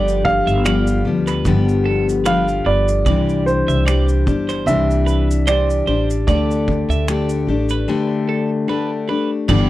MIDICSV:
0, 0, Header, 1, 6, 480
1, 0, Start_track
1, 0, Tempo, 803213
1, 1829, Time_signature, 4, 2, 24, 8
1, 5794, End_track
2, 0, Start_track
2, 0, Title_t, "Upright piano"
2, 0, Program_c, 0, 0
2, 0, Note_on_c, 0, 74, 72
2, 148, Note_on_c, 0, 77, 98
2, 155, Note_off_c, 0, 74, 0
2, 604, Note_off_c, 0, 77, 0
2, 1352, Note_on_c, 0, 77, 85
2, 1591, Note_on_c, 0, 74, 81
2, 1598, Note_off_c, 0, 77, 0
2, 2046, Note_off_c, 0, 74, 0
2, 2069, Note_on_c, 0, 72, 78
2, 2790, Note_on_c, 0, 76, 82
2, 2811, Note_off_c, 0, 72, 0
2, 3271, Note_on_c, 0, 74, 73
2, 3285, Note_off_c, 0, 76, 0
2, 3740, Note_off_c, 0, 74, 0
2, 3749, Note_on_c, 0, 74, 70
2, 5168, Note_off_c, 0, 74, 0
2, 5794, End_track
3, 0, Start_track
3, 0, Title_t, "Clean electric guitar"
3, 0, Program_c, 1, 27
3, 0, Note_on_c, 1, 74, 88
3, 139, Note_off_c, 1, 74, 0
3, 283, Note_on_c, 1, 76, 70
3, 385, Note_off_c, 1, 76, 0
3, 390, Note_on_c, 1, 74, 74
3, 515, Note_off_c, 1, 74, 0
3, 762, Note_on_c, 1, 71, 59
3, 990, Note_off_c, 1, 71, 0
3, 1109, Note_on_c, 1, 69, 72
3, 1235, Note_off_c, 1, 69, 0
3, 1348, Note_on_c, 1, 71, 66
3, 1474, Note_off_c, 1, 71, 0
3, 1591, Note_on_c, 1, 71, 62
3, 1715, Note_off_c, 1, 71, 0
3, 1830, Note_on_c, 1, 74, 80
3, 2058, Note_off_c, 1, 74, 0
3, 2201, Note_on_c, 1, 76, 69
3, 2304, Note_off_c, 1, 76, 0
3, 2310, Note_on_c, 1, 74, 69
3, 2435, Note_off_c, 1, 74, 0
3, 2683, Note_on_c, 1, 72, 61
3, 2911, Note_off_c, 1, 72, 0
3, 3027, Note_on_c, 1, 71, 66
3, 3154, Note_off_c, 1, 71, 0
3, 3269, Note_on_c, 1, 72, 73
3, 3395, Note_off_c, 1, 72, 0
3, 3510, Note_on_c, 1, 72, 64
3, 3636, Note_off_c, 1, 72, 0
3, 3755, Note_on_c, 1, 74, 84
3, 3981, Note_off_c, 1, 74, 0
3, 4124, Note_on_c, 1, 76, 68
3, 4235, Note_off_c, 1, 76, 0
3, 4235, Note_on_c, 1, 74, 64
3, 4359, Note_off_c, 1, 74, 0
3, 4606, Note_on_c, 1, 71, 54
3, 4833, Note_off_c, 1, 71, 0
3, 4953, Note_on_c, 1, 69, 72
3, 5078, Note_off_c, 1, 69, 0
3, 5195, Note_on_c, 1, 71, 67
3, 5320, Note_off_c, 1, 71, 0
3, 5433, Note_on_c, 1, 71, 73
3, 5558, Note_off_c, 1, 71, 0
3, 5673, Note_on_c, 1, 74, 105
3, 5794, Note_off_c, 1, 74, 0
3, 5794, End_track
4, 0, Start_track
4, 0, Title_t, "Steel-string acoustic guitar"
4, 0, Program_c, 2, 25
4, 0, Note_on_c, 2, 43, 72
4, 0, Note_on_c, 2, 50, 60
4, 0, Note_on_c, 2, 53, 64
4, 0, Note_on_c, 2, 55, 69
4, 0, Note_on_c, 2, 59, 71
4, 0, Note_on_c, 2, 67, 77
4, 377, Note_off_c, 2, 53, 0
4, 384, Note_on_c, 2, 53, 53
4, 387, Note_off_c, 2, 55, 0
4, 388, Note_off_c, 2, 43, 0
4, 389, Note_on_c, 2, 55, 55
4, 391, Note_off_c, 2, 59, 0
4, 396, Note_off_c, 2, 67, 0
4, 398, Note_on_c, 2, 59, 58
4, 398, Note_on_c, 2, 67, 56
4, 622, Note_off_c, 2, 67, 0
4, 627, Note_off_c, 2, 53, 0
4, 629, Note_off_c, 2, 55, 0
4, 629, Note_on_c, 2, 67, 39
4, 630, Note_off_c, 2, 59, 0
4, 638, Note_on_c, 2, 59, 38
4, 641, Note_on_c, 2, 55, 38
4, 646, Note_on_c, 2, 53, 33
4, 869, Note_off_c, 2, 67, 0
4, 872, Note_off_c, 2, 53, 0
4, 872, Note_on_c, 2, 43, 78
4, 873, Note_off_c, 2, 55, 0
4, 873, Note_off_c, 2, 59, 0
4, 875, Note_off_c, 2, 50, 0
4, 877, Note_on_c, 2, 50, 80
4, 880, Note_on_c, 2, 53, 74
4, 880, Note_on_c, 2, 55, 75
4, 883, Note_on_c, 2, 59, 83
4, 883, Note_on_c, 2, 67, 78
4, 1340, Note_off_c, 2, 53, 0
4, 1347, Note_off_c, 2, 59, 0
4, 1347, Note_on_c, 2, 53, 51
4, 1350, Note_off_c, 2, 55, 0
4, 1351, Note_off_c, 2, 43, 0
4, 1352, Note_on_c, 2, 55, 52
4, 1354, Note_on_c, 2, 59, 57
4, 1358, Note_off_c, 2, 67, 0
4, 1360, Note_on_c, 2, 67, 58
4, 1828, Note_off_c, 2, 53, 0
4, 1829, Note_off_c, 2, 50, 0
4, 1831, Note_on_c, 2, 48, 63
4, 1832, Note_off_c, 2, 59, 0
4, 1835, Note_off_c, 2, 55, 0
4, 1835, Note_on_c, 2, 52, 67
4, 1838, Note_on_c, 2, 55, 67
4, 1838, Note_on_c, 2, 62, 67
4, 1839, Note_off_c, 2, 67, 0
4, 1841, Note_on_c, 2, 67, 74
4, 2300, Note_off_c, 2, 52, 0
4, 2308, Note_on_c, 2, 52, 58
4, 2310, Note_off_c, 2, 55, 0
4, 2311, Note_off_c, 2, 48, 0
4, 2312, Note_on_c, 2, 55, 55
4, 2314, Note_off_c, 2, 62, 0
4, 2317, Note_on_c, 2, 62, 56
4, 2321, Note_off_c, 2, 67, 0
4, 2323, Note_on_c, 2, 67, 61
4, 2541, Note_off_c, 2, 67, 0
4, 2548, Note_on_c, 2, 67, 41
4, 2549, Note_off_c, 2, 52, 0
4, 2550, Note_off_c, 2, 62, 0
4, 2551, Note_off_c, 2, 55, 0
4, 2557, Note_on_c, 2, 62, 37
4, 2563, Note_on_c, 2, 55, 37
4, 2789, Note_off_c, 2, 55, 0
4, 2789, Note_off_c, 2, 67, 0
4, 2790, Note_on_c, 2, 48, 63
4, 2792, Note_off_c, 2, 62, 0
4, 2793, Note_on_c, 2, 52, 68
4, 2796, Note_on_c, 2, 55, 66
4, 2799, Note_on_c, 2, 62, 71
4, 2802, Note_on_c, 2, 67, 67
4, 3259, Note_off_c, 2, 52, 0
4, 3267, Note_on_c, 2, 52, 52
4, 3268, Note_off_c, 2, 55, 0
4, 3270, Note_on_c, 2, 55, 53
4, 3271, Note_off_c, 2, 48, 0
4, 3275, Note_off_c, 2, 62, 0
4, 3277, Note_on_c, 2, 62, 55
4, 3279, Note_off_c, 2, 67, 0
4, 3281, Note_on_c, 2, 67, 56
4, 3504, Note_off_c, 2, 67, 0
4, 3509, Note_off_c, 2, 52, 0
4, 3511, Note_off_c, 2, 55, 0
4, 3511, Note_off_c, 2, 62, 0
4, 3511, Note_on_c, 2, 67, 45
4, 3519, Note_on_c, 2, 62, 38
4, 3527, Note_on_c, 2, 55, 34
4, 3749, Note_off_c, 2, 62, 0
4, 3750, Note_on_c, 2, 50, 65
4, 3751, Note_off_c, 2, 67, 0
4, 3754, Note_off_c, 2, 55, 0
4, 3757, Note_on_c, 2, 57, 69
4, 3757, Note_on_c, 2, 62, 70
4, 3763, Note_on_c, 2, 67, 71
4, 4227, Note_off_c, 2, 50, 0
4, 4227, Note_off_c, 2, 57, 0
4, 4229, Note_on_c, 2, 50, 54
4, 4234, Note_on_c, 2, 57, 51
4, 4236, Note_off_c, 2, 62, 0
4, 4238, Note_on_c, 2, 62, 60
4, 4242, Note_off_c, 2, 67, 0
4, 4245, Note_on_c, 2, 67, 62
4, 4465, Note_off_c, 2, 67, 0
4, 4471, Note_off_c, 2, 50, 0
4, 4472, Note_off_c, 2, 62, 0
4, 4472, Note_on_c, 2, 67, 47
4, 4473, Note_off_c, 2, 57, 0
4, 4479, Note_on_c, 2, 62, 43
4, 4485, Note_on_c, 2, 57, 34
4, 4705, Note_off_c, 2, 57, 0
4, 4709, Note_off_c, 2, 62, 0
4, 4709, Note_off_c, 2, 67, 0
4, 4709, Note_on_c, 2, 50, 72
4, 4712, Note_on_c, 2, 57, 78
4, 4716, Note_on_c, 2, 67, 82
4, 4717, Note_on_c, 2, 62, 70
4, 5184, Note_off_c, 2, 50, 0
4, 5187, Note_off_c, 2, 57, 0
4, 5187, Note_on_c, 2, 50, 56
4, 5194, Note_off_c, 2, 62, 0
4, 5195, Note_on_c, 2, 57, 61
4, 5197, Note_on_c, 2, 62, 61
4, 5200, Note_off_c, 2, 67, 0
4, 5203, Note_on_c, 2, 67, 58
4, 5421, Note_off_c, 2, 67, 0
4, 5428, Note_on_c, 2, 67, 46
4, 5430, Note_off_c, 2, 50, 0
4, 5430, Note_off_c, 2, 62, 0
4, 5434, Note_off_c, 2, 57, 0
4, 5437, Note_on_c, 2, 62, 39
4, 5443, Note_on_c, 2, 57, 41
4, 5666, Note_on_c, 2, 43, 93
4, 5668, Note_off_c, 2, 67, 0
4, 5668, Note_on_c, 2, 50, 87
4, 5670, Note_on_c, 2, 52, 85
4, 5671, Note_off_c, 2, 57, 0
4, 5671, Note_off_c, 2, 62, 0
4, 5673, Note_on_c, 2, 55, 89
4, 5673, Note_on_c, 2, 59, 85
4, 5675, Note_on_c, 2, 67, 101
4, 5794, Note_off_c, 2, 43, 0
4, 5794, Note_off_c, 2, 50, 0
4, 5794, Note_off_c, 2, 52, 0
4, 5794, Note_off_c, 2, 55, 0
4, 5794, Note_off_c, 2, 59, 0
4, 5794, Note_off_c, 2, 67, 0
4, 5794, End_track
5, 0, Start_track
5, 0, Title_t, "Upright bass"
5, 0, Program_c, 3, 32
5, 0, Note_on_c, 3, 31, 76
5, 258, Note_off_c, 3, 31, 0
5, 279, Note_on_c, 3, 31, 80
5, 604, Note_off_c, 3, 31, 0
5, 626, Note_on_c, 3, 38, 80
5, 867, Note_on_c, 3, 31, 92
5, 876, Note_off_c, 3, 38, 0
5, 1564, Note_off_c, 3, 31, 0
5, 1589, Note_on_c, 3, 31, 71
5, 1810, Note_off_c, 3, 31, 0
5, 1828, Note_on_c, 3, 36, 94
5, 2177, Note_off_c, 3, 36, 0
5, 2200, Note_on_c, 3, 36, 86
5, 2525, Note_off_c, 3, 36, 0
5, 2550, Note_on_c, 3, 31, 77
5, 2771, Note_off_c, 3, 31, 0
5, 2785, Note_on_c, 3, 36, 94
5, 3485, Note_off_c, 3, 36, 0
5, 3508, Note_on_c, 3, 33, 70
5, 3731, Note_off_c, 3, 33, 0
5, 3750, Note_on_c, 3, 38, 84
5, 4099, Note_off_c, 3, 38, 0
5, 4116, Note_on_c, 3, 38, 80
5, 4445, Note_off_c, 3, 38, 0
5, 4464, Note_on_c, 3, 33, 69
5, 4689, Note_off_c, 3, 33, 0
5, 5671, Note_on_c, 3, 31, 94
5, 5794, Note_off_c, 3, 31, 0
5, 5794, End_track
6, 0, Start_track
6, 0, Title_t, "Drums"
6, 48, Note_on_c, 9, 82, 39
6, 108, Note_off_c, 9, 82, 0
6, 150, Note_on_c, 9, 36, 71
6, 210, Note_off_c, 9, 36, 0
6, 287, Note_on_c, 9, 82, 37
6, 347, Note_off_c, 9, 82, 0
6, 392, Note_on_c, 9, 82, 69
6, 393, Note_on_c, 9, 26, 100
6, 452, Note_off_c, 9, 82, 0
6, 453, Note_off_c, 9, 26, 0
6, 521, Note_on_c, 9, 82, 57
6, 581, Note_off_c, 9, 82, 0
6, 760, Note_on_c, 9, 82, 49
6, 766, Note_on_c, 9, 26, 33
6, 820, Note_off_c, 9, 82, 0
6, 825, Note_off_c, 9, 26, 0
6, 868, Note_on_c, 9, 36, 78
6, 868, Note_on_c, 9, 82, 64
6, 928, Note_off_c, 9, 36, 0
6, 928, Note_off_c, 9, 82, 0
6, 1007, Note_on_c, 9, 82, 42
6, 1066, Note_off_c, 9, 82, 0
6, 1249, Note_on_c, 9, 82, 43
6, 1309, Note_off_c, 9, 82, 0
6, 1348, Note_on_c, 9, 82, 69
6, 1352, Note_on_c, 9, 26, 93
6, 1408, Note_off_c, 9, 82, 0
6, 1411, Note_off_c, 9, 26, 0
6, 1484, Note_on_c, 9, 82, 47
6, 1544, Note_off_c, 9, 82, 0
6, 1722, Note_on_c, 9, 82, 46
6, 1782, Note_off_c, 9, 82, 0
6, 1829, Note_on_c, 9, 36, 92
6, 1830, Note_on_c, 9, 82, 57
6, 1889, Note_off_c, 9, 36, 0
6, 1890, Note_off_c, 9, 82, 0
6, 1968, Note_on_c, 9, 82, 37
6, 2027, Note_off_c, 9, 82, 0
6, 2076, Note_on_c, 9, 82, 44
6, 2136, Note_off_c, 9, 82, 0
6, 2206, Note_on_c, 9, 82, 39
6, 2266, Note_off_c, 9, 82, 0
6, 2317, Note_on_c, 9, 26, 102
6, 2317, Note_on_c, 9, 82, 71
6, 2377, Note_off_c, 9, 26, 0
6, 2377, Note_off_c, 9, 82, 0
6, 2442, Note_on_c, 9, 82, 56
6, 2502, Note_off_c, 9, 82, 0
6, 2552, Note_on_c, 9, 36, 73
6, 2555, Note_on_c, 9, 82, 42
6, 2611, Note_off_c, 9, 36, 0
6, 2614, Note_off_c, 9, 82, 0
6, 2683, Note_on_c, 9, 82, 45
6, 2689, Note_on_c, 9, 26, 33
6, 2743, Note_off_c, 9, 82, 0
6, 2749, Note_off_c, 9, 26, 0
6, 2794, Note_on_c, 9, 82, 72
6, 2854, Note_off_c, 9, 82, 0
6, 2931, Note_on_c, 9, 82, 38
6, 2991, Note_off_c, 9, 82, 0
6, 3031, Note_on_c, 9, 82, 39
6, 3091, Note_off_c, 9, 82, 0
6, 3172, Note_on_c, 9, 82, 47
6, 3232, Note_off_c, 9, 82, 0
6, 3271, Note_on_c, 9, 82, 70
6, 3274, Note_on_c, 9, 26, 91
6, 3331, Note_off_c, 9, 82, 0
6, 3334, Note_off_c, 9, 26, 0
6, 3407, Note_on_c, 9, 82, 42
6, 3467, Note_off_c, 9, 82, 0
6, 3646, Note_on_c, 9, 82, 44
6, 3706, Note_off_c, 9, 82, 0
6, 3751, Note_on_c, 9, 36, 89
6, 3753, Note_on_c, 9, 82, 62
6, 3811, Note_off_c, 9, 36, 0
6, 3813, Note_off_c, 9, 82, 0
6, 3891, Note_on_c, 9, 82, 38
6, 3950, Note_off_c, 9, 82, 0
6, 3991, Note_on_c, 9, 36, 73
6, 4051, Note_off_c, 9, 36, 0
6, 4126, Note_on_c, 9, 82, 39
6, 4186, Note_off_c, 9, 82, 0
6, 4233, Note_on_c, 9, 26, 108
6, 4233, Note_on_c, 9, 82, 60
6, 4293, Note_off_c, 9, 26, 0
6, 4293, Note_off_c, 9, 82, 0
6, 4358, Note_on_c, 9, 82, 54
6, 4418, Note_off_c, 9, 82, 0
6, 4595, Note_on_c, 9, 82, 45
6, 4655, Note_off_c, 9, 82, 0
6, 5670, Note_on_c, 9, 49, 94
6, 5671, Note_on_c, 9, 36, 109
6, 5730, Note_off_c, 9, 49, 0
6, 5731, Note_off_c, 9, 36, 0
6, 5794, End_track
0, 0, End_of_file